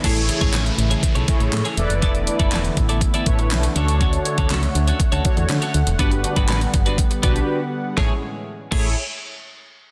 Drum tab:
CC |x---------------|----------------|----------------|----------------|
HH |xxxxxxxxxxxxxxxx|xxxxxxxxxxxxxxxx|xxxxxxxxxxxxxxxx|xxxxxxxxxxxx----|
CP |----x-------x---|----x-------x---|----x-------x---|----x-----------|
SD |----o-------o---|----o-------o---|----o-------o---|----o-----------|
BD |o--o----o-o-----|o--o--o-o-o-----|o--o----o-o-----|o--o--o-o-o-----|

CC |------x---------|
HH |----------------|
CP |----------------|
SD |o---------------|
BD |o-----o---------|